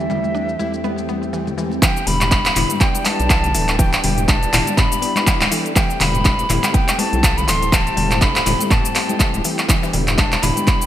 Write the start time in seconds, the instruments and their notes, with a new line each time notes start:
Already playing: tonewheel organ E2 G3 A3 C4 E4 G4, ambient pad E3 G3 A3 C4 G4, flute E5
0.10 synth arpeggio sound G3, muted conga, low conga, cabasa
0.24 high conga, cabasa
0.35 synth arpeggio sound D4, cabasa
0.49 muted conga, cabasa
0.59 tonewheel organ E2 G3 A3 C4 E4 G4, synth arpeggio sound E4, high conga, cabasa
0.74 cabasa
0.84 synth arpeggio sound B3, muted conga, high conga, cabasa
0.98 cabasa
1.09 synth arpeggio sound B3, high conga, cabasa
1.23 muted conga, cabasa
1.33 synth arpeggio sound E3, cabasa
1.47 high conga, low conga, cabasa
1.58 synth arpeggio sound E3, high conga, cabasa
1.71 muted conga, cabasa
1.82 synth arpeggio sound E3, tonewheel organ G3 B3 D4 E4 G4, ambient pad E4 B4 D5 G5, flute G5, kick, clap, closed hi-hat, muted conga, cabasa
1.97 cabasa
2.07 analog synth bass E1, synth arpeggio sound G3, flute B5, open hi-hat, low conga, cabasa
2.21 clap, closed hi-hat, mid tom, muted conga, cabasa
2.31 synth arpeggio sound D4, kick, clap, closed hi-hat, high conga, cabasa
2.45 clap, closed hi-hat, cabasa
2.56 analog synth bass E1, tonewheel organ G3 B3 D4 E4 G4, synth arpeggio sound E4, clap, mid tom, open hi-hat, muted conga, low conga, cabasa
2.70 closed hi-hat, high conga, cabasa
2.81 synth arpeggio sound B3, flute G5, kick, clap, closed hi-hat, cabasa
2.95 closed hi-hat, muted conga, cabasa
3.05 synth arpeggio sound B3, flute A5, clap, open hi-hat, high conga, cabasa
3.20 analog synth bass B1, closed hi-hat, cabasa
3.30 synth arpeggio sound E3, kick, clap, closed hi-hat, cabasa
3.44 closed hi-hat, muted conga, low conga, cabasa
3.54 analog synth bass D1, synth arpeggio sound E3, tonewheel organ G3 B3 D4 E4 A4, open hi-hat, cabasa
3.68 clap, closed hi-hat, cabasa
3.79 synth arpeggio sound E3, tonewheel organ G3 B3 D4 E4 G4, flute G5, kick, closed hi-hat, muted conga, cabasa
3.93 clap, closed hi-hat, cabasa
4.03 analog synth bass E1, synth arpeggio sound G3, flute G5, open hi-hat, low conga, cabasa
4.18 closed hi-hat, mid tom, muted conga, cabasa
4.28 synth arpeggio sound D4, flute A5, kick, clap, closed hi-hat, high conga, cabasa
4.43 closed hi-hat, cabasa
4.53 analog synth bass E1, tonewheel organ G3 B3 D4 E4 G4, synth arpeggio sound E4, clap, mid tom, open hi-hat, muted conga, low conga, cabasa
4.67 closed hi-hat, high conga, cabasa
4.77 synth arpeggio sound B3, flute B5, kick, clap, closed hi-hat, mid tom, cabasa
4.91 closed hi-hat, muted conga, cabasa
5.02 synth arpeggio sound B3, open hi-hat, cabasa
5.16 clap, closed hi-hat, high conga, cabasa
5.27 synth arpeggio sound E3, kick, clap, closed hi-hat, cabasa
5.41 analog synth bass D1, clap, closed hi-hat, muted conga, high conga, cabasa
5.51 synth arpeggio sound E3, tonewheel organ G3 B3 D4 E4 A4, open hi-hat, cabasa
5.66 closed hi-hat, cabasa
5.76 synth arpeggio sound E3, tonewheel organ G3 A3 C4 E4 G4, ambient pad A4 C5, flute G5, kick, clap, closed hi-hat, muted conga, cabasa
5.90 cabasa
6.00 analog synth bass E1, synth arpeggio sound G3, flute B5, clap, open hi-hat, low conga, cabasa
6.14 closed hi-hat, mid tom, muted conga, cabasa
6.25 synth arpeggio sound D4, kick, clap, closed hi-hat, high conga, cabasa
6.39 closed hi-hat, cabasa
6.50 analog synth bass E1, tonewheel organ G3 A3 C4 E4 G4, synth arpeggio sound E4, clap, mid tom, open hi-hat, muted conga, low conga, cabasa
6.64 clap, closed hi-hat, high conga, cabasa
6.74 synth arpeggio sound B3, flute G5, kick, closed hi-hat, cabasa
6.88 clap, closed hi-hat, muted conga, cabasa
6.99 synth arpeggio sound B3, flute A5, open hi-hat, high conga, cabasa
7.13 analog synth bass B1, closed hi-hat, cabasa
7.23 synth arpeggio sound E3, kick, clap, closed hi-hat, cabasa
7.37 flute B5, closed hi-hat, muted conga, low conga, cabasa
7.48 analog synth bass D1, synth arpeggio sound E3, tonewheel organ G3 A3 C4 E4 A4, flute C6, clap, open hi-hat, cabasa
7.62 closed hi-hat, cabasa
7.72 synth arpeggio sound E3, tonewheel organ G3 A3 C4 E4 G4, flute A5, kick, clap, closed hi-hat, muted conga, cabasa
7.87 closed hi-hat, cabasa
7.97 analog synth bass E1, synth arpeggio sound G3, open hi-hat, low conga, cabasa
8.11 clap, closed hi-hat, mid tom, muted conga, cabasa
8.21 synth arpeggio sound D4, flute B5, kick, clap, closed hi-hat, high conga, cabasa
8.36 clap, closed hi-hat, cabasa
8.46 analog synth bass E1, tonewheel organ G3 A3 C4 E4 G4, synth arpeggio sound E4, clap, mid tom, open hi-hat, muted conga, low conga, cabasa
8.60 closed hi-hat, high conga, cabasa
8.71 synth arpeggio sound B3, flute A5, kick, clap, closed hi-hat, mid tom, cabasa
8.85 closed hi-hat, muted conga, cabasa
8.95 synth arpeggio sound B3, clap, open hi-hat, cabasa
9.09 closed hi-hat, high conga, cabasa
9.20 synth arpeggio sound E3, kick, clap, closed hi-hat, cabasa
9.34 analog synth bass D1, closed hi-hat, muted conga, high conga, cabasa
9.44 synth arpeggio sound E3, tonewheel organ G3 A3 C4 E4 G4, open hi-hat, cabasa
9.59 clap, closed hi-hat, cabasa
9.69 synth arpeggio sound E3, tonewheel organ G3 B3 D4 E4 G4, ambient pad E4 B4 D5, kick, clap, closed hi-hat, muted conga, cabasa
9.83 synth arpeggio sound E3, cabasa
9.93 analog synth bass E1, synth arpeggio sound G3, open hi-hat, low conga, cabasa
10.07 clap, closed hi-hat, mid tom, muted conga, cabasa
10.18 synth arpeggio sound D4, flute A5, kick, clap, closed hi-hat, high conga, cabasa
10.32 clap, closed hi-hat, cabasa
10.42 analog synth bass E1, tonewheel organ G3 B3 D4 E4 G4, synth arpeggio sound E4, flute B5, clap, mid tom, open hi-hat, muted conga, low conga, cabasa
10.57 closed hi-hat, high conga, cabasa
10.67 synth arpeggio sound B3, kick, clap, closed hi-hat, cabasa
10.81 closed hi-hat, muted conga, cabasa